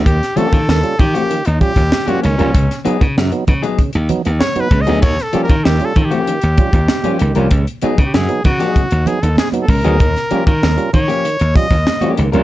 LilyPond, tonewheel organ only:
<<
  \new Staff \with { instrumentName = "Tonewheel organ" } { \time 4/4 \key ees \mixolydian \tempo 4 = 97 r8 <g des' f'>16 <des' f'>16 r16 <g des' f'>16 <des' f'>16 r8. <g des' f'>16 <des' f'>16 r16 <g des' f'>16 r16 <g des' f'>16 | r8 <ges ces' ees'>16 <ces' ees'>16 r16 <ges ces' ees'>16 <ces' ees'>16 r8. <ges ces' ees'>16 <ces' ees'>16 r16 <ges ces' ees'>16 r16 <ges ces' ees'>16 | r8 <g des' f'>16 <des' f'>16 r16 <g des' f'>16 <des' f'>16 r8. <g des' f'>16 <des' f'>16 r16 <g des' f'>16 r16 <g des' f'>16 | r8 <ges ces' ees'>16 <ces' ees'>16 r16 <ges ces' ees'>16 <ces' ees'>16 r8. <ges ces' ees'>16 <ces' ees'>16 r16 <ges ces' ees'>16 r16 <ges ces' ees'>16 |
r8 <g des' f'>16 <des' f'>16 r16 <g des' f'>16 <des' f'>16 r8. <g des' f'>16 <des' f'>16 r16 <g des' f'>16 r16 <g des' f'>16 | }
  \new Staff \with { instrumentName = "Tonewheel organ" } { \clef bass \time 4/4 \key ees \mixolydian ees8 r8 ees8 r8 ees8 r4 ees8 | des8 r8 des8 r8 des8 r4 des8 | ees8 r8 ees8 r8 ees8 r4 ees8 | des8 r8 des8 r8 des8 r4 des8 |
ees8 r8 ees8 r8 ees8 r4 ees8 | }
>>